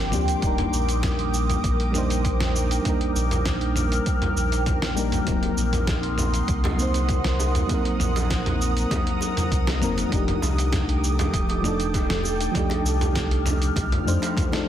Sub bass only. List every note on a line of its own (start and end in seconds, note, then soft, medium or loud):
0.00 0.14 G1 loud
0.12 0.35 D2 medium
0.42 0.66 D#1 loud
0.73 1.58 A#1 loud
1.64 2.79 A#1 loud
3.16 4.01 A#1 loud
4.36 5.22 A#1 medium
5.27 5.50 D#1 loud
5.58 6.43 A#1 loud
6.48 7.64 C2 loud
8.00 8.85 A#1 loud
9.51 9.83 C2 medium
9.82 10.05 F#1 medium
10.12 10.35 F1 loud
10.43 11.28 C2 loud
11.33 12.49 D#1 loud
12.85 13.70 C2 loud
13.76 13.99 C2 loud
14.06 14.18 F2 loud